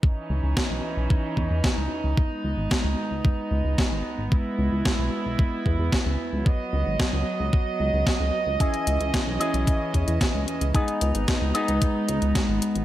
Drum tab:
HH |----------------|----------------|----------------|----------------|
SD |----o-------o---|----o-------o---|----o-------o---|----o-------o---|
BD |o---o---o-o-o---|o---o---o---o---|o---o---o-o-o---|o---o---o---o---|

HH |xxxxx-xxx-xxx-xx|xxxxx-xxx-xxx-xx|
SD |----o-------o---|----o-------o---|
BD |o---o---o-o-o---|o---o---o---o---|